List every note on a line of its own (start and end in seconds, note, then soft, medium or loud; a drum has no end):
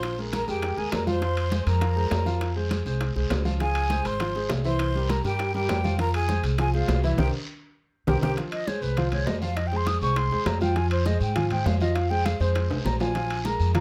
0.00 0.42 A#1 medium
0.00 0.13 F3 medium
0.00 0.13 F4 medium
0.00 0.18 C5 medium
0.00 0.13 F5 medium
0.00 0.19 C6 medium
0.00 high bongo medium
0.00 high conga soft
0.00 high timbale medium
0.00 long guiro medium
0.18 0.43 G#3 medium
0.18 0.43 G#4 medium
0.18 0.43 A#4 medium
0.18 high conga soft
0.33 0.47 A#4 medium
0.33 0.47 A#5 medium
0.33 high bongo medium
0.33 high conga medium
0.33 high timbale medium
0.33 low timbale medium
0.33 short guiro medium
0.47 0.75 F2 medium
0.47 0.72 G#3 medium
0.47 0.80 G4 medium
0.47 0.72 G#4 medium
0.47 0.72 A#4 medium
0.47 0.80 G5 medium
0.47 high bongo soft
0.47 short guiro medium
0.62 high bongo medium
0.62 high conga soft
0.62 high timbale medium
0.62 long guiro medium
0.77 0.91 D#2 medium
0.77 1.01 G#3 medium
0.77 1.02 G#4 medium
0.77 0.92 G#4 medium
0.77 1.02 A#4 medium
0.77 0.93 G#5 medium
0.77 high bongo soft
0.77 high conga soft
0.92 1.61 F2 medium
0.92 1.07 A#4 medium
0.92 1.07 A#5 medium
0.92 high bongo medium
0.92 low bongo medium
0.92 high conga soft
0.92 high timbale medium
0.92 low timbale medium
0.92 short guiro medium
1.07 1.19 F3 medium
1.07 1.19 F4 medium
1.07 1.63 C5 medium
1.07 1.19 F5 medium
1.07 1.63 C6 medium
1.07 high bongo soft
1.07 high conga medium
1.07 short guiro medium
1.22 1.46 F3 medium
1.22 1.46 F4 medium
1.22 1.46 F5 medium
1.22 high bongo medium
1.22 high conga soft
1.22 high timbale medium
1.22 long guiro medium
1.37 high conga soft
1.37 high timbale medium
1.51 1.76 G#3 medium
1.51 1.76 G#4 medium
1.51 1.77 C5 medium
1.51 high bongo medium
1.51 high conga loud
1.51 low timbale medium
1.51 short guiro medium
1.66 2.08 F2 medium
1.66 2.52 A#4 medium
1.66 2.52 A#5 medium
1.66 high bongo soft
1.66 high conga soft
1.66 high timbale medium
1.66 short guiro medium
1.81 1.94 F3 medium
1.81 1.94 F4 medium
1.81 1.94 F5 medium
1.81 high bongo medium
1.81 high conga soft
1.81 high timbale medium
1.81 long guiro medium
1.96 2.21 G#3 medium
1.96 2.21 G#4 medium
1.96 2.21 C5 medium
1.96 high bongo soft
1.96 high conga soft
2.11 2.80 F2 medium
2.11 high bongo medium
2.11 low bongo medium
2.11 high conga soft
2.11 high timbale medium
2.11 low timbale medium
2.11 short guiro medium
2.26 2.51 F3 medium
2.26 2.51 F4 medium
2.26 2.51 F5 medium
2.26 high bongo soft
2.26 high conga soft
2.26 short guiro medium
2.41 high bongo medium
2.41 high conga soft
2.41 high timbale medium
2.41 long guiro medium
2.56 2.80 G#3 medium
2.56 2.81 G#4 medium
2.56 2.81 C5 medium
2.56 high conga soft
2.71 high bongo medium
2.71 high conga loud
2.71 high timbale medium
2.71 low timbale medium
2.71 short guiro medium
2.85 3.14 C2 medium
2.85 3.10 G#3 medium
2.85 3.10 G#4 medium
2.85 3.11 C5 medium
2.85 high bongo soft
2.85 short guiro medium
3.01 high bongo medium
3.01 high conga soft
3.01 high timbale medium
3.01 long guiro medium
3.16 3.30 C2 medium
3.16 3.40 G#3 medium
3.16 3.40 G#4 medium
3.16 3.41 C5 medium
3.16 high bongo soft
3.16 high conga soft
3.30 4.00 C#2 medium
3.30 high bongo medium
3.30 low bongo medium
3.30 high conga soft
3.30 high timbale medium
3.30 low timbale medium
3.30 short guiro medium
3.45 3.58 F3 medium
3.45 3.58 F4 medium
3.45 3.58 F5 medium
3.45 high bongo soft
3.45 high conga medium
3.45 short guiro medium
3.60 3.85 F3 medium
3.60 3.85 F4 medium
3.60 4.07 G#4 medium
3.60 3.85 F5 medium
3.60 4.08 G#5 loud
3.60 high bongo medium
3.60 high conga soft
3.60 high timbale medium
3.60 long guiro medium
3.75 high conga soft
3.75 high timbale medium
3.90 4.15 G#3 medium
3.90 4.15 G#4 medium
3.90 4.15 C5 medium
3.90 high bongo medium
3.90 high conga loud
3.90 low timbale medium
3.90 short guiro medium
4.05 4.47 G#1 medium
4.05 4.50 C5 medium
4.05 4.50 C6 loud
4.05 high bongo soft
4.05 high conga soft
4.05 high timbale medium
4.05 short guiro medium
4.20 4.32 F3 medium
4.20 4.33 F4 medium
4.20 4.33 F5 medium
4.20 high bongo medium
4.20 high conga soft
4.20 high timbale medium
4.20 long guiro medium
4.35 4.60 G#3 medium
4.35 4.60 G#4 medium
4.35 4.60 C5 medium
4.35 high bongo soft
4.35 high conga soft
4.49 5.19 C2 medium
4.49 high bongo medium
4.49 low bongo medium
4.49 high conga soft
4.49 high timbale medium
4.49 low timbale medium
4.49 short guiro medium
4.65 4.89 E3 medium
4.65 4.90 E4 medium
4.65 5.11 C5 medium
4.65 4.90 E5 medium
4.65 5.12 C6 loud
4.65 high bongo soft
4.65 high conga soft
4.65 short guiro medium
4.79 high bongo medium
4.79 high conga soft
4.79 high timbale medium
4.79 long guiro medium
4.95 5.19 G3 medium
4.95 5.20 G4 medium
4.95 5.20 A#4 medium
4.95 high conga soft
5.09 5.23 A#4 medium
5.09 5.25 A#5 medium
5.09 high bongo medium
5.09 high conga loud
5.09 high timbale medium
5.09 low timbale medium
5.09 short guiro medium
5.24 5.66 G2 medium
5.24 5.49 G3 medium
5.24 5.52 G4 medium
5.24 5.49 G4 medium
5.24 5.49 A#4 medium
5.24 5.53 G5 loud
5.24 high bongo soft
5.24 short guiro medium
5.39 high bongo medium
5.39 high conga soft
5.39 high timbale medium
5.39 long guiro medium
5.54 5.79 G3 medium
5.54 5.96 G4 medium
5.54 5.79 G4 medium
5.54 5.79 A#4 medium
5.54 5.96 G5 medium
5.54 high bongo soft
5.54 high conga soft
5.68 6.38 F2 medium
5.68 high bongo medium
5.68 low bongo medium
5.68 high timbale medium
5.68 low timbale medium
5.68 short guiro medium
5.84 5.96 F3 medium
5.84 5.96 F4 medium
5.84 5.97 F5 medium
5.84 high bongo soft
5.84 high conga medium
5.84 short guiro medium
5.98 6.23 F3 medium
5.98 6.23 F4 medium
5.98 6.13 A#4 medium
5.98 6.23 F5 medium
5.98 6.13 A#5 medium
5.98 high bongo medium
5.98 high timbale medium
5.98 long guiro medium
6.14 6.42 G#4 medium
6.14 6.42 G#5 loud
6.14 high conga soft
6.14 high timbale medium
6.28 6.53 G#3 medium
6.28 6.53 G#4 medium
6.28 6.53 C5 medium
6.28 high bongo medium
6.28 high conga loud
6.28 low timbale medium
6.28 short guiro medium
6.43 6.85 C2 medium
6.43 high bongo soft
6.43 high conga soft
6.43 high timbale medium
6.43 short guiro medium
6.58 6.71 F3 medium
6.58 6.71 F4 medium
6.58 6.73 G#4 medium
6.58 6.71 F5 medium
6.58 6.73 G#5 loud
6.58 high bongo medium
6.58 high conga soft
6.58 high timbale medium
6.58 long guiro medium
6.74 6.98 G#3 medium
6.74 7.01 F4 medium
6.74 6.98 G#4 medium
6.74 6.98 C5 medium
6.74 7.02 F5 medium
6.74 high bongo soft
6.74 high conga soft
6.88 7.16 C2 medium
6.88 high bongo medium
6.88 low bongo medium
6.88 high timbale medium
6.88 low timbale medium
6.88 short guiro medium
7.03 7.16 E3 medium
7.03 7.17 E4 medium
7.03 7.16 E4 medium
7.03 7.18 E5 medium
7.03 7.16 E5 medium
7.03 high bongo soft
7.03 high conga soft
7.03 short guiro medium
7.17 7.29 C2 medium
7.17 7.28 G4 loud
7.17 7.28 G4 medium
7.17 7.28 A#4 medium
7.17 7.28 C5 medium
7.17 7.28 G5 medium
7.17 low bongo loud
7.17 low conga medium
7.17 high timbale medium
7.17 long guiro medium
8.07 8.19 C2 medium
8.07 8.17 G4 medium
8.07 8.17 A#4 medium
8.07 8.17 C5 medium
8.07 8.18 G5 medium
8.07 low bongo loud
8.07 low conga medium
8.07 high timbale medium
8.07 long guiro medium
8.22 8.33 C2 medium
8.22 8.32 G4 medium
8.22 8.32 A#4 medium
8.22 8.32 C5 medium
8.22 8.32 G5 medium
8.22 low bongo loud
8.22 low conga medium
8.22 high timbale medium
8.22 long guiro medium
8.37 8.62 F3 medium
8.37 8.62 F4 medium
8.37 8.62 F5 medium
8.37 high bongo medium
8.37 high conga soft
8.37 high timbale medium
8.37 long guiro medium
8.52 8.69 D#5 medium
8.52 high bongo soft
8.52 high conga soft
8.52 high timbale medium
8.67 8.92 G#3 medium
8.67 8.92 G#4 medium
8.67 8.92 C5 medium
8.67 8.83 C#5 medium
8.67 high bongo medium
8.67 high conga medium
8.67 low timbale medium
8.67 short guiro medium
8.82 9.24 C2 medium
8.82 8.99 B4 medium
8.82 short guiro medium
8.97 9.10 F3 medium
8.97 9.10 F4 medium
8.97 9.11 C5 medium
8.97 9.10 F5 medium
8.97 high bongo medium
8.97 high conga soft
8.97 low conga medium
8.97 high timbale medium
8.97 long guiro medium
9.12 9.37 G#3 medium
9.12 9.37 G#4 medium
9.12 9.37 C5 medium
9.12 9.28 C#5 medium
9.12 high bongo soft
9.12 high conga soft
9.12 low conga medium
9.12 high timbale medium
9.27 9.96 F2 medium
9.27 9.40 D#5 medium
9.27 high bongo soft
9.27 low bongo medium
9.27 high conga medium
9.27 low timbale medium
9.27 short guiro medium
9.41 9.67 F3 medium
9.41 9.67 F4 medium
9.41 9.58 F5 medium
9.41 9.67 F5 medium
9.41 high bongo soft
9.41 high conga soft
9.41 short guiro medium
9.57 9.69 D#5 medium
9.57 high bongo medium
9.57 high conga soft
9.57 high timbale medium
9.57 long guiro medium
9.67 9.78 G5 medium
9.72 9.96 G#3 medium
9.72 9.97 G#4 medium
9.72 9.97 C5 medium
9.72 high bongo soft
9.72 high conga soft
9.77 9.89 C6 medium
9.87 10.01 D#6 loud
9.87 high bongo medium
9.87 high conga loud
9.87 high timbale medium
9.87 low timbale medium
9.87 short guiro medium
10.01 10.29 C2 medium
10.01 10.27 G#3 medium
10.01 10.27 G#4 medium
10.01 10.27 C5 medium
10.01 10.19 C#6 loud
10.01 high conga soft
10.01 short guiro medium
10.16 10.48 C6 medium
10.16 high bongo medium
10.16 high conga soft
10.16 high timbale medium
10.16 long guiro medium
10.31 10.45 D#2 medium
10.31 10.56 G#3 medium
10.31 10.56 G#4 medium
10.31 10.56 C5 medium
10.31 high bongo soft
10.31 high conga soft
10.46 11.15 F2 loud
10.46 10.61 A#5 medium
10.46 high bongo soft
10.46 low bongo medium
10.46 high conga soft
10.46 high timbale medium
10.46 low timbale medium
10.46 short guiro medium
10.61 10.74 F3 medium
10.61 10.74 F4 medium
10.61 10.74 F5 medium
10.61 10.78 G5 medium
10.61 high bongo soft
10.61 high conga medium
10.61 short guiro medium
10.76 11.01 F3 medium
10.76 11.01 F4 medium
10.76 11.01 F5 medium
10.76 10.91 G#5 loud
10.76 high bongo medium
10.76 high timbale medium
10.76 long guiro medium
10.91 11.08 C5 medium
10.91 high bongo soft
10.91 high conga soft
10.91 high timbale medium
11.06 11.30 G#3 medium
11.06 11.31 G#4 medium
11.06 11.31 C5 medium
11.06 11.21 D#5 medium
11.06 high bongo medium
11.06 high conga medium
11.06 low timbale medium
11.06 short guiro medium
11.20 11.62 G#2 medium
11.20 11.38 G5 medium
11.20 high conga soft
11.20 short guiro medium
11.36 11.48 F3 medium
11.36 11.48 F4 medium
11.36 11.48 F5 medium
11.36 11.51 G#5 medium
11.36 high bongo medium
11.36 high conga soft
11.36 low conga medium
11.36 high timbale medium
11.36 long guiro medium
11.50 11.75 G#3 medium
11.50 11.76 G#4 medium
11.50 11.76 C5 medium
11.50 11.68 G5 medium
11.50 high bongo soft
11.50 high conga soft
11.50 low conga medium
11.50 high timbale medium
11.65 12.35 F2 loud
11.65 11.80 F5 medium
11.65 high bongo soft
11.65 low bongo medium
11.65 high conga medium
11.65 low timbale medium
11.65 short guiro medium
11.80 12.06 F3 medium
11.80 12.06 F4 medium
11.80 11.97 D#5 medium
11.80 12.06 F5 medium
11.80 high bongo soft
11.80 high conga soft
11.80 short guiro medium
11.95 12.12 F5 medium
11.95 high bongo medium
11.95 high conga soft
11.95 high timbale medium
11.95 long guiro medium
12.10 12.35 G#3 medium
12.10 12.35 G#4 medium
12.10 12.35 C5 medium
12.10 12.27 G5 loud
12.10 high bongo soft
12.10 high conga soft
12.25 12.42 F5 medium
12.25 high bongo medium
12.25 high conga loud
12.25 high timbale medium
12.25 low timbale medium
12.25 short guiro medium
12.40 12.68 F2 medium
12.40 12.65 G#3 medium
12.40 12.65 G#4 medium
12.40 12.71 C5 medium
12.40 12.65 C5 medium
12.40 high conga soft
12.40 short guiro medium
12.55 high bongo medium
12.55 high conga soft
12.55 high timbale medium
12.55 long guiro medium
12.70 12.84 C2 medium
12.70 12.95 G#3 medium
12.70 12.95 G#4 medium
12.70 12.95 C5 medium
12.70 high bongo soft
12.70 high conga soft
12.70 high timbale medium
12.85 13.54 A#1 medium
12.85 12.99 A#5 medium
12.85 high bongo soft
12.85 low bongo medium
12.85 high conga soft
12.85 low timbale medium
12.85 short guiro medium
13.00 13.13 F3 medium
13.00 13.13 F4 medium
13.00 13.13 F5 medium
13.00 13.47 G#5 loud
13.00 high bongo soft
13.00 low timbale medium
13.00 short guiro medium
13.15 13.40 F3 medium
13.15 13.40 F4 medium
13.15 13.40 F5 medium
13.15 high bongo medium
13.15 high conga soft
13.15 high timbale medium
13.15 long guiro medium
13.30 high bongo soft
13.30 high conga soft
13.30 high timbale medium
13.45 13.70 G#3 medium
13.45 13.70 G#4 medium
13.45 13.70 A#4 medium
13.45 13.75 A#5 medium
13.45 high bongo medium
13.45 high conga medium
13.45 low timbale medium
13.45 short guiro medium
13.60 13.80 F2 medium
13.60 high conga soft
13.60 short guiro medium
13.74 13.80 F3 medium
13.74 13.80 F4 medium
13.74 13.80 F5 medium
13.74 13.80 A#5 medium
13.74 high bongo medium
13.74 high conga soft
13.74 low conga medium
13.74 high timbale medium
13.74 long guiro medium